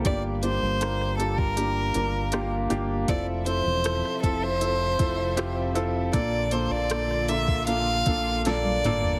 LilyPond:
<<
  \new Staff \with { instrumentName = "Violin" } { \time 4/4 \key f \major \tempo 4 = 79 d''8 c''4 a'16 bes'4. r8. | d''8 c''4 a'16 c''4. r8. | d''8 c''16 d''8. e''8 f''4 d''4 | }
  \new Staff \with { instrumentName = "Grand piano" } { \time 4/4 \key f \major <bes d' f' g'>8 <bes d' f' g'>8 <bes d' f' bes'>8 <bes d' f' g'>8 <bes d' f' g'>8 <bes d' f' bes'>8 <bes d' f' g'>8 <bes d' f' g'>8 | <c' e' f' a'>8 <c' e' f' a'>8 <c' e' f' a'>8 <c' e' f' a'>8 <c' e' f' a'>8 <c' e' f' a'>8 <c' e' f' g'>8 <c' e' f' a'>8 | <bes d' f' a'>8 <bes d' f' a'>8 <bes d' f' a'>8 <bes d' f' a'>8 <bes d' f' a'>8 <bes d' f' a'>8 <bes d' f' a'>8 <bes d' f' a'>8 | }
  \new Staff \with { instrumentName = "Grand piano" } { \clef bass \time 4/4 \key f \major g,4. r2 r8 | r1 | bes,4. r2 r8 | }
  \new Staff \with { instrumentName = "Clean electric guitar" } { \time 4/4 \key f \major g,8 bes8 g'4 d'4 <bes d' g'>8 g'8 | f8 c'8 a'4 e'4 <c' e' a'>8 a'8 | bes,8 bes8 a'4 d'4 <bes d' a'>8 a'8 | }
  \new Staff \with { instrumentName = "String section" } { \time 4/4 \key f \major r1 | <c f a' e''>1 | <d bes f'>1 | }
  \new Staff \with { instrumentName = "Fingered electric bass" } { \clef bass \time 4/4 \key f \major g,,8. g,,4.~ g,,16 g,,4 g,,8 | f,,8. e,,8 r16 f,,4 f,,4. | bes,,8. bes,,4.~ bes,,16 bes,,4 g,,8 | }
  \new DrumStaff \with { instrumentName = "Drums" } \drummode { \time 4/4 <hh bd>8 hh8 <hh ss>16 ss16 hh16 bd16 hh8 hh8 <hh ss>8 hh8 | <hh bd>8 hh8 <hh ss>16 ss16 <hh bd>8 hh8 <hh bd>8 <hh ss>8 hh8 | <hh bd>8 hh8 <hh ss>16 ss16 hh16 bd16 hh8 <hh bd>8 <hh sn>16 tommh16 <hh toml>16 tomfh16 | }
>>